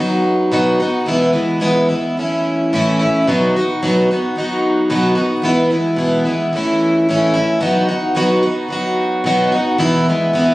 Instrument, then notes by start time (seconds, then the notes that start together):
twelve-string acoustic guitar
Already playing: F#3
0.00 B3 D#4 F#4
0.52 B2 F#3 B3 D#4 F#4
0.80 B3 D#4 F#4
1.06 E2 B2 E3 G#3 B3 E4
1.33 E3 G#3 B3 E4
1.60 E2 B2 E3 G#3 B3 E4
1.89 E3 G#3 B3 E4
2.17 E3 A3 C#4 E4
2.73 A2 E3 A3 C#4 E4
2.99 A3 C#4 E4
3.27 B2 F#3 B3 D#4 F#4
3.56 B3 D#4 F#4
3.83 B2 F#3 B3 D#4 F#4
4.11 B3 D#4 F#4
4.36 F#3 B3 D#4 F#4
4.90 B2 F#3 B3 D#4 F#4
5.15 B3 D#4 F#4
5.42 E2 B2 E3 G#3 B3 E4
5.70 E3 G#3 B3 E4
5.96 E2 B2 E3 G#3 B3 E4
6.25 E3 G#3 B3 E4
6.53 E3 A3 C#4 E4
7.09 A2 E3 A3 C#4 E4
7.34 A3 C#4 E4
7.61 B2 F#3 B3 D#4 F#4
7.89 B3 D#4 F#4
8.15 B2 F#3 B3 D#4 F#4
8.43 B3 D#4 F#4
8.68 F#3 B3 D#4
8.72 F#4
9.24 B2 F#3 B3 D#4 F#4
9.52 D#4 F#4
9.56 B3
9.78 E2 B2 E3 G#3 B3 E4
10.08 E3 G#3 B3 E4
10.33 E2 B2 E3 G#3 B3 E4